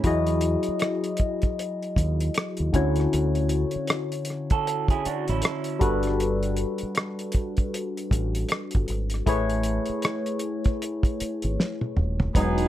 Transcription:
0.04 0.55 E2 medium
0.04 2.69 F#3 medium
0.04 2.69 E4 medium
0.04 2.70 F#4 medium
0.04 2.70 G#4 medium
0.04 2.71 D#5 medium
0.04 kick medium
0.04 closed hi-hat medium
0.27 closed hi-hat soft
0.41 closed hi-hat medium
0.63 closed hi-hat soft
0.68 muted fingered electric bass stroke soft
0.79 cross-stick medium
0.79 closed hi-hat medium
1.04 closed hi-hat soft
1.17 kick medium
1.17 closed hi-hat medium
1.42 kick medium
1.42 closed hi-hat soft
1.59 closed hi-hat medium
1.83 closed hi-hat soft
1.96 2.28 D#2 medium
1.96 kick medium
1.96 closed hi-hat medium
2.20 closed hi-hat medium
2.34 cross-stick loud
2.34 closed hi-hat medium
2.57 2.72 D#2 medium
2.57 closed hi-hat soft
2.72 3.06 D2 medium
2.72 5.77 D3 medium
2.72 5.77 C#4 medium
2.72 5.77 E4 medium
2.72 5.78 F#4 medium
2.72 5.78 C#5 medium
2.72 kick medium
2.72 closed hi-hat medium
2.96 closed hi-hat soft
3.00 cross-stick soft
3.13 3.64 D2 medium
3.13 closed hi-hat medium
3.35 closed hi-hat soft
3.49 closed hi-hat medium
3.71 closed hi-hat soft
3.76 muted fingered electric bass stroke soft
3.87 cross-stick medium
3.87 closed hi-hat medium
4.12 closed hi-hat soft
4.25 closed hi-hat medium
4.30 cross-stick soft
4.50 4.88 F#4 medium
4.50 4.88 A4 medium
4.50 kick medium
4.50 closed hi-hat soft
4.67 closed hi-hat medium
4.88 5.05 E4 medium
4.88 5.04 G#4 medium
4.88 kick medium
4.88 closed hi-hat soft
5.05 5.27 D4 medium
5.05 5.27 F#4 medium
5.05 muted fingered electric bass stroke soft
5.05 closed hi-hat medium
5.28 5.41 A1 medium
5.28 5.79 C#4 medium
5.28 5.79 E4 medium
5.28 closed hi-hat soft
5.42 cross-stick loud
5.42 closed hi-hat medium
5.64 closed hi-hat soft
5.79 6.64 G1 medium
5.79 8.84 G3 medium
5.79 8.84 D4 medium
5.79 8.85 F#4 medium
5.79 8.85 A4 medium
5.79 8.85 B4 medium
5.79 kick medium
5.79 closed hi-hat medium
6.03 closed hi-hat soft
6.07 cross-stick soft
6.20 closed hi-hat medium
6.43 closed hi-hat soft
6.57 closed hi-hat medium
6.78 closed hi-hat soft
6.83 muted fingered electric bass stroke soft
6.95 cross-stick medium
6.95 closed hi-hat medium
7.19 closed hi-hat soft
7.32 kick medium
7.32 closed hi-hat medium
7.57 kick medium
7.57 closed hi-hat soft
7.74 closed hi-hat medium
7.97 closed hi-hat soft
8.11 8.43 A1 medium
8.11 kick medium
8.11 closed hi-hat medium
8.35 closed hi-hat medium
8.49 cross-stick medium
8.49 closed hi-hat medium
8.71 kick medium
8.71 closed hi-hat medium
8.76 8.87 G1 medium
8.88 9.21 G#1 medium
8.88 closed hi-hat medium
9.10 closed hi-hat soft
9.14 cross-stick soft
9.26 9.78 A1 medium
9.26 12.30 A3 medium
9.26 12.31 E4 medium
9.26 12.31 G#4 medium
9.26 12.32 B4 medium
9.26 12.32 C#5 medium
9.26 kick medium
9.26 closed hi-hat medium
9.50 closed hi-hat soft
9.63 closed hi-hat medium
9.86 muted fingered electric bass stroke soft
9.86 closed hi-hat soft
10.02 cross-stick medium
10.02 closed hi-hat medium
10.26 closed hi-hat soft
10.39 closed hi-hat medium
10.64 kick medium
10.64 closed hi-hat soft
10.82 closed hi-hat medium
11.03 kick medium
11.03 closed hi-hat soft
11.20 muted fingered electric bass stroke soft
11.20 closed hi-hat medium
11.42 11.56 G#1 medium
11.42 closed hi-hat medium
11.60 snare medium
11.81 high tom medium
11.97 12.29 D#1 medium
11.97 mid tom medium
12.20 floor tom medium
12.35 12.67 E1 loud
12.35 12.68 E3 medium
12.35 12.68 F#3 medium
12.35 12.68 G#3 medium
12.35 12.68 B3 medium
12.35 12.68 D#4 medium
12.35 12.68 F#4 medium
12.35 12.68 G#4 medium
12.35 kick loud
12.35 closed hi-hat medium
12.58 closed hi-hat medium

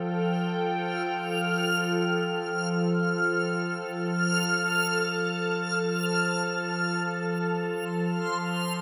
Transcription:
0.00 7.47 F3 medium
0.00 7.49 F4 medium
0.00 8.82 A4 medium
0.00 3.89 G5 medium
0.00 7.51 F6 medium
3.65 8.82 A5 medium
7.48 8.82 F3 medium
7.48 8.82 C6 medium
8.30 8.82 C5 medium

